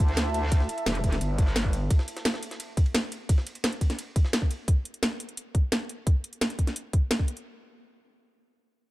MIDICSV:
0, 0, Header, 1, 4, 480
1, 0, Start_track
1, 0, Key_signature, 1, "minor"
1, 0, Tempo, 346821
1, 716, Time_signature, 4, 2, 24, 8
1, 12330, End_track
2, 0, Start_track
2, 0, Title_t, "Analog synth pad"
2, 0, Program_c, 0, 89
2, 0, Note_on_c, 0, 64, 72
2, 0, Note_on_c, 0, 69, 96
2, 0, Note_on_c, 0, 76, 90
2, 0, Note_on_c, 0, 81, 79
2, 2636, Note_off_c, 0, 64, 0
2, 2636, Note_off_c, 0, 69, 0
2, 2636, Note_off_c, 0, 76, 0
2, 2637, Note_off_c, 0, 81, 0
2, 12330, End_track
3, 0, Start_track
3, 0, Title_t, "Wobble bass"
3, 0, Program_c, 1, 39
3, 0, Note_on_c, 1, 38, 95
3, 937, Note_off_c, 1, 38, 0
3, 1196, Note_on_c, 1, 28, 94
3, 1657, Note_off_c, 1, 28, 0
3, 1676, Note_on_c, 1, 31, 99
3, 2617, Note_off_c, 1, 31, 0
3, 12330, End_track
4, 0, Start_track
4, 0, Title_t, "Drums"
4, 116, Note_on_c, 9, 51, 42
4, 235, Note_off_c, 9, 51, 0
4, 235, Note_on_c, 9, 38, 112
4, 235, Note_on_c, 9, 51, 88
4, 236, Note_off_c, 9, 38, 0
4, 236, Note_on_c, 9, 38, 122
4, 236, Note_on_c, 9, 42, 90
4, 374, Note_off_c, 9, 38, 0
4, 374, Note_off_c, 9, 42, 0
4, 374, Note_off_c, 9, 51, 0
4, 476, Note_on_c, 9, 42, 60
4, 476, Note_on_c, 9, 51, 72
4, 614, Note_off_c, 9, 42, 0
4, 614, Note_off_c, 9, 51, 0
4, 716, Note_on_c, 9, 36, 119
4, 716, Note_on_c, 9, 42, 89
4, 716, Note_on_c, 9, 51, 87
4, 836, Note_on_c, 9, 38, 47
4, 854, Note_off_c, 9, 36, 0
4, 854, Note_off_c, 9, 42, 0
4, 854, Note_off_c, 9, 51, 0
4, 956, Note_on_c, 9, 42, 64
4, 956, Note_on_c, 9, 51, 65
4, 975, Note_off_c, 9, 38, 0
4, 1076, Note_off_c, 9, 42, 0
4, 1076, Note_off_c, 9, 51, 0
4, 1076, Note_on_c, 9, 42, 36
4, 1076, Note_on_c, 9, 51, 41
4, 1195, Note_off_c, 9, 51, 0
4, 1195, Note_on_c, 9, 38, 112
4, 1195, Note_on_c, 9, 51, 91
4, 1196, Note_off_c, 9, 38, 0
4, 1196, Note_off_c, 9, 42, 0
4, 1196, Note_on_c, 9, 38, 117
4, 1196, Note_on_c, 9, 42, 85
4, 1316, Note_off_c, 9, 42, 0
4, 1316, Note_on_c, 9, 42, 35
4, 1334, Note_off_c, 9, 38, 0
4, 1334, Note_off_c, 9, 51, 0
4, 1435, Note_on_c, 9, 51, 68
4, 1436, Note_off_c, 9, 42, 0
4, 1436, Note_on_c, 9, 36, 66
4, 1436, Note_on_c, 9, 42, 57
4, 1556, Note_off_c, 9, 42, 0
4, 1556, Note_on_c, 9, 38, 38
4, 1556, Note_on_c, 9, 42, 35
4, 1574, Note_off_c, 9, 36, 0
4, 1574, Note_off_c, 9, 51, 0
4, 1676, Note_off_c, 9, 42, 0
4, 1676, Note_on_c, 9, 42, 84
4, 1676, Note_on_c, 9, 51, 81
4, 1695, Note_off_c, 9, 38, 0
4, 1814, Note_off_c, 9, 42, 0
4, 1814, Note_off_c, 9, 51, 0
4, 1915, Note_on_c, 9, 51, 66
4, 1916, Note_on_c, 9, 36, 109
4, 1916, Note_on_c, 9, 42, 60
4, 2036, Note_on_c, 9, 38, 39
4, 2054, Note_off_c, 9, 51, 0
4, 2055, Note_off_c, 9, 36, 0
4, 2055, Note_off_c, 9, 42, 0
4, 2156, Note_off_c, 9, 38, 0
4, 2156, Note_on_c, 9, 38, 112
4, 2156, Note_on_c, 9, 51, 84
4, 2157, Note_off_c, 9, 38, 0
4, 2157, Note_on_c, 9, 38, 118
4, 2157, Note_on_c, 9, 42, 89
4, 2276, Note_on_c, 9, 36, 64
4, 2294, Note_off_c, 9, 51, 0
4, 2295, Note_off_c, 9, 38, 0
4, 2295, Note_off_c, 9, 42, 0
4, 2396, Note_on_c, 9, 42, 55
4, 2396, Note_on_c, 9, 51, 72
4, 2415, Note_off_c, 9, 36, 0
4, 2534, Note_off_c, 9, 42, 0
4, 2535, Note_off_c, 9, 51, 0
4, 2636, Note_on_c, 9, 42, 91
4, 2637, Note_on_c, 9, 36, 115
4, 2637, Note_on_c, 9, 51, 90
4, 2757, Note_on_c, 9, 38, 55
4, 2775, Note_off_c, 9, 36, 0
4, 2775, Note_off_c, 9, 42, 0
4, 2775, Note_off_c, 9, 51, 0
4, 2876, Note_on_c, 9, 42, 63
4, 2877, Note_on_c, 9, 51, 68
4, 2895, Note_off_c, 9, 38, 0
4, 2997, Note_off_c, 9, 42, 0
4, 2997, Note_on_c, 9, 38, 55
4, 2997, Note_on_c, 9, 42, 36
4, 3015, Note_off_c, 9, 51, 0
4, 3117, Note_off_c, 9, 38, 0
4, 3117, Note_off_c, 9, 42, 0
4, 3117, Note_on_c, 9, 38, 111
4, 3117, Note_on_c, 9, 42, 83
4, 3117, Note_on_c, 9, 51, 81
4, 3237, Note_off_c, 9, 38, 0
4, 3237, Note_on_c, 9, 38, 58
4, 3255, Note_off_c, 9, 42, 0
4, 3255, Note_off_c, 9, 51, 0
4, 3357, Note_on_c, 9, 42, 62
4, 3357, Note_on_c, 9, 51, 67
4, 3375, Note_off_c, 9, 38, 0
4, 3477, Note_off_c, 9, 42, 0
4, 3477, Note_on_c, 9, 38, 39
4, 3477, Note_on_c, 9, 42, 34
4, 3495, Note_off_c, 9, 51, 0
4, 3596, Note_off_c, 9, 42, 0
4, 3596, Note_on_c, 9, 42, 87
4, 3597, Note_on_c, 9, 51, 88
4, 3615, Note_off_c, 9, 38, 0
4, 3734, Note_off_c, 9, 42, 0
4, 3735, Note_off_c, 9, 51, 0
4, 3836, Note_on_c, 9, 36, 100
4, 3836, Note_on_c, 9, 42, 61
4, 3837, Note_on_c, 9, 51, 65
4, 3957, Note_off_c, 9, 51, 0
4, 3957, Note_on_c, 9, 51, 44
4, 3975, Note_off_c, 9, 36, 0
4, 3975, Note_off_c, 9, 42, 0
4, 4076, Note_off_c, 9, 51, 0
4, 4076, Note_on_c, 9, 38, 119
4, 4076, Note_on_c, 9, 42, 89
4, 4076, Note_on_c, 9, 51, 82
4, 4215, Note_off_c, 9, 38, 0
4, 4215, Note_off_c, 9, 42, 0
4, 4215, Note_off_c, 9, 51, 0
4, 4316, Note_on_c, 9, 42, 56
4, 4317, Note_on_c, 9, 51, 67
4, 4455, Note_off_c, 9, 42, 0
4, 4455, Note_off_c, 9, 51, 0
4, 4556, Note_on_c, 9, 36, 111
4, 4557, Note_on_c, 9, 42, 91
4, 4557, Note_on_c, 9, 51, 89
4, 4677, Note_on_c, 9, 38, 44
4, 4695, Note_off_c, 9, 36, 0
4, 4695, Note_off_c, 9, 42, 0
4, 4695, Note_off_c, 9, 51, 0
4, 4797, Note_on_c, 9, 42, 62
4, 4797, Note_on_c, 9, 51, 69
4, 4815, Note_off_c, 9, 38, 0
4, 4916, Note_off_c, 9, 51, 0
4, 4916, Note_on_c, 9, 51, 42
4, 4917, Note_off_c, 9, 42, 0
4, 4917, Note_on_c, 9, 42, 34
4, 5036, Note_off_c, 9, 51, 0
4, 5036, Note_on_c, 9, 38, 114
4, 5036, Note_on_c, 9, 51, 87
4, 5037, Note_off_c, 9, 38, 0
4, 5037, Note_off_c, 9, 42, 0
4, 5037, Note_on_c, 9, 38, 107
4, 5037, Note_on_c, 9, 42, 86
4, 5156, Note_off_c, 9, 42, 0
4, 5156, Note_on_c, 9, 42, 35
4, 5174, Note_off_c, 9, 51, 0
4, 5175, Note_off_c, 9, 38, 0
4, 5276, Note_off_c, 9, 42, 0
4, 5276, Note_on_c, 9, 36, 60
4, 5276, Note_on_c, 9, 42, 60
4, 5276, Note_on_c, 9, 51, 70
4, 5396, Note_off_c, 9, 42, 0
4, 5396, Note_on_c, 9, 38, 36
4, 5396, Note_on_c, 9, 42, 37
4, 5414, Note_off_c, 9, 36, 0
4, 5414, Note_off_c, 9, 51, 0
4, 5516, Note_off_c, 9, 42, 0
4, 5516, Note_on_c, 9, 42, 87
4, 5516, Note_on_c, 9, 51, 85
4, 5535, Note_off_c, 9, 38, 0
4, 5655, Note_off_c, 9, 42, 0
4, 5655, Note_off_c, 9, 51, 0
4, 5756, Note_on_c, 9, 36, 100
4, 5756, Note_on_c, 9, 42, 64
4, 5756, Note_on_c, 9, 51, 67
4, 5876, Note_on_c, 9, 38, 36
4, 5894, Note_off_c, 9, 36, 0
4, 5895, Note_off_c, 9, 42, 0
4, 5895, Note_off_c, 9, 51, 0
4, 5996, Note_off_c, 9, 38, 0
4, 5996, Note_on_c, 9, 38, 114
4, 5996, Note_on_c, 9, 42, 85
4, 5997, Note_off_c, 9, 38, 0
4, 5997, Note_on_c, 9, 38, 113
4, 5997, Note_on_c, 9, 51, 90
4, 6116, Note_on_c, 9, 36, 60
4, 6134, Note_off_c, 9, 42, 0
4, 6135, Note_off_c, 9, 38, 0
4, 6135, Note_off_c, 9, 51, 0
4, 6236, Note_on_c, 9, 51, 64
4, 6237, Note_on_c, 9, 42, 61
4, 6255, Note_off_c, 9, 36, 0
4, 6375, Note_off_c, 9, 42, 0
4, 6375, Note_off_c, 9, 51, 0
4, 6476, Note_on_c, 9, 36, 110
4, 6477, Note_on_c, 9, 42, 92
4, 6615, Note_off_c, 9, 36, 0
4, 6615, Note_off_c, 9, 42, 0
4, 6717, Note_on_c, 9, 42, 69
4, 6837, Note_off_c, 9, 42, 0
4, 6837, Note_on_c, 9, 42, 38
4, 6957, Note_off_c, 9, 42, 0
4, 6957, Note_on_c, 9, 38, 107
4, 6957, Note_on_c, 9, 42, 93
4, 7095, Note_off_c, 9, 38, 0
4, 7095, Note_off_c, 9, 42, 0
4, 7197, Note_on_c, 9, 42, 68
4, 7317, Note_off_c, 9, 42, 0
4, 7317, Note_on_c, 9, 42, 38
4, 7437, Note_off_c, 9, 42, 0
4, 7437, Note_on_c, 9, 42, 97
4, 7575, Note_off_c, 9, 42, 0
4, 7676, Note_on_c, 9, 36, 94
4, 7677, Note_on_c, 9, 42, 63
4, 7815, Note_off_c, 9, 36, 0
4, 7816, Note_off_c, 9, 42, 0
4, 7917, Note_on_c, 9, 38, 105
4, 7917, Note_on_c, 9, 42, 95
4, 8056, Note_off_c, 9, 38, 0
4, 8056, Note_off_c, 9, 42, 0
4, 8158, Note_on_c, 9, 42, 64
4, 8296, Note_off_c, 9, 42, 0
4, 8396, Note_on_c, 9, 36, 110
4, 8397, Note_on_c, 9, 42, 93
4, 8535, Note_off_c, 9, 36, 0
4, 8536, Note_off_c, 9, 42, 0
4, 8637, Note_on_c, 9, 42, 68
4, 8757, Note_off_c, 9, 42, 0
4, 8757, Note_on_c, 9, 42, 37
4, 8877, Note_off_c, 9, 42, 0
4, 8877, Note_on_c, 9, 38, 103
4, 8877, Note_on_c, 9, 42, 97
4, 8997, Note_off_c, 9, 42, 0
4, 8997, Note_on_c, 9, 42, 39
4, 9015, Note_off_c, 9, 38, 0
4, 9116, Note_on_c, 9, 36, 59
4, 9117, Note_off_c, 9, 42, 0
4, 9117, Note_on_c, 9, 42, 65
4, 9237, Note_off_c, 9, 42, 0
4, 9237, Note_on_c, 9, 38, 34
4, 9237, Note_on_c, 9, 42, 37
4, 9255, Note_off_c, 9, 36, 0
4, 9356, Note_off_c, 9, 42, 0
4, 9356, Note_on_c, 9, 42, 99
4, 9375, Note_off_c, 9, 38, 0
4, 9495, Note_off_c, 9, 42, 0
4, 9596, Note_on_c, 9, 42, 65
4, 9597, Note_on_c, 9, 36, 95
4, 9735, Note_off_c, 9, 36, 0
4, 9735, Note_off_c, 9, 42, 0
4, 9836, Note_on_c, 9, 38, 112
4, 9836, Note_on_c, 9, 42, 99
4, 9956, Note_on_c, 9, 36, 57
4, 9975, Note_off_c, 9, 38, 0
4, 9975, Note_off_c, 9, 42, 0
4, 10076, Note_on_c, 9, 42, 66
4, 10095, Note_off_c, 9, 36, 0
4, 10196, Note_off_c, 9, 42, 0
4, 10196, Note_on_c, 9, 42, 37
4, 10335, Note_off_c, 9, 42, 0
4, 12330, End_track
0, 0, End_of_file